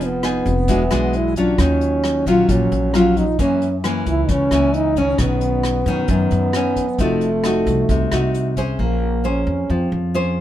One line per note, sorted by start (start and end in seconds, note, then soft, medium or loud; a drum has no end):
0.00 0.42 F1 medium
0.00 0.66 F3 medium
0.00 closed hi-hat soft
0.05 1.18 B3 medium
0.23 0.54 B3 medium
0.23 0.54 D#4 medium
0.23 0.54 G#4 medium
0.23 cross-stick medium
0.23 closed hi-hat soft
0.46 0.68 F1 medium
0.46 kick soft
0.46 closed hi-hat soft
0.68 0.89 E1 medium
0.68 1.56 E3 medium
0.68 0.82 G#3 medium
0.68 0.82 D4 medium
0.68 0.82 F#4 medium
0.68 kick medium
0.68 closed hi-hat medium
0.91 1.55 B1 medium
0.91 1.32 G#3 medium
0.91 1.32 D4 medium
0.91 1.33 F#4 medium
0.91 cross-stick medium
0.91 closed hi-hat soft
1.13 1.37 E4 medium
1.13 closed hi-hat soft
1.36 2.23 F#3 medium
1.36 2.23 C#4 medium
1.36 1.62 D4 medium
1.36 2.23 F4 medium
1.36 kick soft
1.36 closed hi-hat soft
1.58 2.22 D#2 medium
1.58 2.47 D#3 medium
1.58 2.27 C#4 medium
1.58 kick medium
1.58 cross-stick medium
1.58 closed hi-hat medium
1.81 closed hi-hat soft
2.04 cross-stick medium
2.04 closed hi-hat soft
2.26 2.47 A#1 medium
2.26 2.91 F#3 medium
2.26 2.91 C#4 medium
2.26 2.91 F4 medium
2.26 2.52 F4 medium
2.26 kick soft
2.26 closed hi-hat soft
2.49 2.70 A#1 medium
2.49 3.37 A#2 medium
2.49 2.98 C#4 medium
2.49 kick medium
2.49 closed hi-hat medium
2.72 3.35 A#1 medium
2.72 closed hi-hat soft
2.94 3.24 F#3 medium
2.94 3.25 C#4 medium
2.94 3.25 F4 medium
2.94 3.19 F4 medium
2.94 cross-stick medium
2.94 closed hi-hat soft
3.16 3.40 D#4 medium
3.16 kick soft
3.16 closed hi-hat soft
3.39 4.27 F#2 medium
3.39 4.03 F#2 medium
3.39 3.68 E3 medium
3.39 3.68 A#3 medium
3.39 3.68 C#4 medium
3.39 3.78 C#4 medium
3.39 kick medium
3.39 closed hi-hat medium
3.62 closed hi-hat soft
3.84 4.48 E3 medium
3.84 4.48 A#3 soft
3.84 4.49 C#4 medium
3.84 cross-stick medium
3.84 closed hi-hat soft
4.06 4.27 C#2 medium
4.06 4.33 E4 medium
4.06 kick soft
4.06 closed hi-hat soft
4.29 4.50 C#2 medium
4.29 5.17 C#3 medium
4.29 4.77 C#4 loud
4.29 kick medium
4.29 closed hi-hat medium
4.51 5.15 C#2 medium
4.51 4.93 E3 medium
4.51 4.93 A#3 medium
4.51 4.93 C#4 medium
4.51 cross-stick soft
4.51 closed hi-hat soft
4.74 5.00 D#4 loud
4.74 closed hi-hat soft
4.96 5.83 D#3 medium
4.96 5.84 C#4 medium
4.96 5.20 C#4 medium
4.96 kick soft
4.96 closed hi-hat soft
5.18 5.82 B1 medium
5.18 6.07 B2 medium
5.18 6.06 B3 medium
5.18 kick medium
5.18 cross-stick medium
5.18 closed hi-hat medium
5.41 closed hi-hat soft
5.64 cross-stick medium
5.64 closed hi-hat soft
5.86 6.07 F#2 medium
5.86 6.51 D#3 medium
5.86 6.51 C#4 medium
5.86 kick soft
5.86 closed hi-hat soft
6.08 6.30 F#2 medium
6.08 6.97 F#2 medium
6.08 7.03 B3 medium
6.08 kick medium
6.08 closed hi-hat medium
6.31 6.95 F#2 medium
6.31 closed hi-hat soft
6.53 6.85 D#3 medium
6.53 6.85 C#4 medium
6.53 cross-stick medium
6.53 closed hi-hat soft
6.76 kick soft
6.76 closed hi-hat soft
6.98 7.62 F1 medium
6.98 7.87 F3 medium
6.98 7.29 A3 medium
6.98 8.36 A3 medium
6.98 7.29 D#4 medium
6.98 7.29 F#4 medium
6.98 kick medium
6.98 closed hi-hat soft
7.21 closed hi-hat soft
7.44 8.09 A3 medium
7.44 8.09 D#4 medium
7.44 8.09 F#4 medium
7.44 cross-stick medium
7.44 closed hi-hat soft
7.66 7.88 C2 medium
7.66 kick soft
7.66 closed hi-hat soft
7.89 8.10 C2 medium
7.89 8.77 C3 medium
7.89 kick medium
7.89 closed hi-hat medium
8.12 8.75 C2 medium
8.12 8.53 A3 medium
8.12 8.53 D#4 medium
8.12 8.54 F#4 medium
8.12 cross-stick medium
8.12 closed hi-hat soft
8.34 closed hi-hat soft
8.57 9.23 C#4 medium
8.57 9.23 G#4 medium
8.57 9.23 C5 medium
8.57 kick soft
8.57 closed hi-hat soft
8.79 9.43 A#1 medium
8.79 9.67 A#3 soft
8.79 9.30 A#3 medium
9.24 10.11 C#4 soft
9.24 10.11 G#4 medium
9.24 10.11 C5 medium
9.28 9.73 C#4 medium
9.47 9.68 F2 medium
9.70 9.90 F2 medium
9.70 10.41 F3 medium
9.70 9.93 C4 medium
9.92 10.41 F2 medium
10.14 10.41 C#4 medium
10.14 10.41 G#4 soft
10.14 10.41 C5 medium